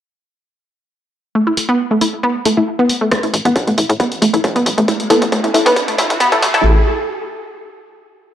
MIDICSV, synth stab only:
0, 0, Header, 1, 2, 480
1, 0, Start_track
1, 0, Tempo, 441176
1, 1471, Time_signature, 4, 2, 24, 8
1, 9075, End_track
2, 0, Start_track
2, 0, Title_t, "Synth stab"
2, 0, Program_c, 0, 62
2, 1710, Note_on_c, 0, 57, 82
2, 1710, Note_on_c, 0, 64, 71
2, 1710, Note_on_c, 0, 69, 91
2, 1810, Note_off_c, 0, 57, 0
2, 1810, Note_off_c, 0, 64, 0
2, 1810, Note_off_c, 0, 69, 0
2, 2190, Note_on_c, 0, 57, 91
2, 2190, Note_on_c, 0, 64, 81
2, 2190, Note_on_c, 0, 69, 96
2, 2290, Note_off_c, 0, 57, 0
2, 2290, Note_off_c, 0, 64, 0
2, 2290, Note_off_c, 0, 69, 0
2, 2670, Note_on_c, 0, 57, 86
2, 2670, Note_on_c, 0, 64, 82
2, 2670, Note_on_c, 0, 69, 98
2, 2770, Note_off_c, 0, 57, 0
2, 2770, Note_off_c, 0, 64, 0
2, 2770, Note_off_c, 0, 69, 0
2, 2797, Note_on_c, 0, 57, 88
2, 2797, Note_on_c, 0, 64, 80
2, 2797, Note_on_c, 0, 69, 96
2, 2943, Note_off_c, 0, 57, 0
2, 2943, Note_off_c, 0, 64, 0
2, 2943, Note_off_c, 0, 69, 0
2, 3630, Note_on_c, 0, 57, 83
2, 3730, Note_off_c, 0, 57, 0
2, 4109, Note_on_c, 0, 69, 105
2, 4110, Note_on_c, 0, 57, 93
2, 4210, Note_off_c, 0, 57, 0
2, 4210, Note_off_c, 0, 69, 0
2, 4589, Note_on_c, 0, 57, 89
2, 4589, Note_on_c, 0, 64, 83
2, 4589, Note_on_c, 0, 69, 98
2, 4689, Note_off_c, 0, 69, 0
2, 4690, Note_off_c, 0, 57, 0
2, 4690, Note_off_c, 0, 64, 0
2, 4716, Note_on_c, 0, 57, 90
2, 4716, Note_on_c, 0, 64, 82
2, 4716, Note_on_c, 0, 69, 98
2, 4862, Note_off_c, 0, 57, 0
2, 4862, Note_off_c, 0, 64, 0
2, 4862, Note_off_c, 0, 69, 0
2, 5549, Note_on_c, 0, 57, 95
2, 5549, Note_on_c, 0, 64, 90
2, 5549, Note_on_c, 0, 69, 107
2, 5706, Note_off_c, 0, 57, 0
2, 5706, Note_off_c, 0, 64, 0
2, 5706, Note_off_c, 0, 69, 0
2, 6029, Note_on_c, 0, 57, 75
2, 6029, Note_on_c, 0, 64, 66
2, 6029, Note_on_c, 0, 69, 82
2, 6129, Note_off_c, 0, 57, 0
2, 6129, Note_off_c, 0, 64, 0
2, 6130, Note_off_c, 0, 69, 0
2, 6878, Note_on_c, 0, 57, 78
2, 6878, Note_on_c, 0, 64, 74
2, 6878, Note_on_c, 0, 69, 88
2, 6966, Note_off_c, 0, 57, 0
2, 6966, Note_off_c, 0, 64, 0
2, 6966, Note_off_c, 0, 69, 0
2, 7118, Note_on_c, 0, 57, 91
2, 7118, Note_on_c, 0, 64, 82
2, 7118, Note_on_c, 0, 69, 98
2, 7217, Note_off_c, 0, 57, 0
2, 7217, Note_off_c, 0, 64, 0
2, 7217, Note_off_c, 0, 69, 0
2, 9075, End_track
0, 0, End_of_file